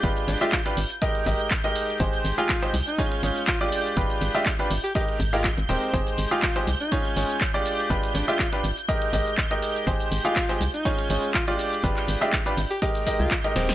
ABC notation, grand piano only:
X:1
M:4/4
L:1/16
Q:"Swing 16ths" 1/4=122
K:Ab
V:1 name="Grand piano"
[A,=DFG=B]3 [A,DFG_f] z [D=FGB] z2 [A,EG_Be]2 [A,EGBe]2 z [A,EGBe]3 | [A,EGAc]3 [A,EGAf] z [A,EGAc] z2 [A,DFAd]2 [A,DFAd]2 z [A,=DFG=d]3 | [A,=DFG=B]3 [A,DFG_f] z [D=FGB] z2 [A,EG_Be]2 z [A,EGB=f] z2 [A,EGBc]2 | [A,EGAc]3 [A,EGAf] z [A,EGAc] z2 [A,DFAd]2 [A,DFAd]2 z [A,=DFG=d]3 |
[A,=DFG=B]3 [A,DFG_f] z [D=FGB] z2 [A,EG_Be]2 [A,EGBe]2 z [A,EGBe]3 | [A,EGAc]3 [A,EGAf] z [A,EGAc] z2 [A,DFAd]2 [A,DFAd]2 z [A,=DFG=d]3 | [A,=DFG=B]3 [A,DFG_f] z [D=FGB] z2 [A,EG_Be]2 [A,EGBe]2 z [A,EGBe]3 |]